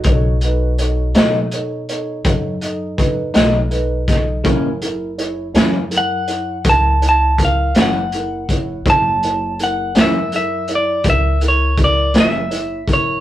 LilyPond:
<<
  \new Staff \with { instrumentName = "Clean electric guitar" } { \time 12/8 \key fis \dorian \tempo 4. = 55 r1. | r2 fis''4 a''8 a''8 eis''8 fis''4. | a''4 fis''8 e''8 e''8 d''8 e''8 cis''8 d''8 e''4 cis''8 | }
  \new Staff \with { instrumentName = "Grand piano" } { \time 12/8 \key fis \dorian <dis' a' cis''>8 <dis' a' b'>8 <dis' a' cis''>8 <dis' a' cis''>8 <dis' a' cis''>8 <dis' a' cis''>8 <dis' a' cis''>8 <dis' a' dis''>8 <dis' a' b'>8 <dis' a' cis''>8 <dis' a' b'>8 <dis' a' dis''>8 | <e' gis' ais'>8 <e' gis' ais'>8 <e' gis' cis''>8 <e' gis' cis''>8 <e' gis' ais'>8 <e' gis' cis''>8 <e' gis' ais'>8 <e' gis' cis''>8 <e' gis' ais'>8 <e' gis' cis''>8 <e' gis' ais'>8 <e' gis' cis''>8 | <e' gis' cis''>8 <e' gis' cis''>8 <e' gis' ais'>8 <e' gis' ais'>8 <e' gis' ais'>8 <e' gis' cis''>8 <e' gis' ais'>8 <e' gis' ais'>8 <e' gis' ais'>8 <e' gis' cis''>8 <e' gis' cis''>8 <e' gis' ais'>8 | }
  \new Staff \with { instrumentName = "Upright piano" } { \time 12/8 \key fis \dorian fis'2 r1 | r1. | r1. | }
  \new Staff \with { instrumentName = "Clean electric guitar" } { \clef bass \time 12/8 \key fis \dorian r4. <b, fis a dis'>8 r2 r8 <b, fis a dis'>8 r4 | <fis, e ais cis'>8 r4 <fis, e ais cis'>8 r2 r8 <fis, e ais cis'>8 r4 | r4. <fis, e ais cis'>8 r2 r8 <fis, e ais cis'>8 r4 | }
  \new Staff \with { instrumentName = "Upright bass" } { \clef bass \time 12/8 \key fis \dorian b,,4. b,4. fis,4. b,,4. | fis,,4. fis,4. cis,4. fis,,4. | fis,,4. fis,4. cis,4. fis,,4. | }
  \new DrumStaff \with { instrumentName = "Drums" } \drummode { \time 12/8 <hh bd>8 hh8 hh8 <hh sn>8 hh8 hh8 <hh bd>8 hh8 <hh bd>8 <hh sn>8 hh8 <hh bd sn>8 | <hh bd>8 hh8 hh8 <hh sn>8 hh8 hh8 <hh bd>8 hh8 <hh bd>8 <hh sn>8 hh8 <hh bd>8 | <hh bd>8 hh8 hh8 <hh sn>8 hh8 hh8 <hh bd>8 hh8 <hh bd>8 <hh sn>8 hh8 <hh bd>8 | }
>>